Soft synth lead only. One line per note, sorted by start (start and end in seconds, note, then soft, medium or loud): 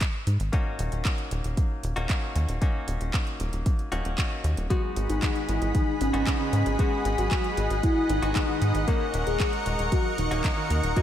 4.70 5.00 F#4 loud
5.09 5.39 D#4 loud
5.49 5.69 E4 medium
5.75 5.95 D#4 medium
6.01 6.31 C#4 loud
6.40 6.70 C#4 loud
6.79 7.09 G#4 loud
7.18 7.48 F#4 loud
7.57 7.77 F#4 medium
7.83 8.03 E4 loud
8.09 8.39 D#4 medium
8.49 8.78 D#4 medium
8.88 9.17 A#4 loud
9.27 9.57 G#4 medium
9.66 9.86 G#4 medium
9.92 10.12 F#4 medium
10.18 10.48 D#4 loud
10.57 10.87 D#4 medium
10.96 11.02 F#4 loud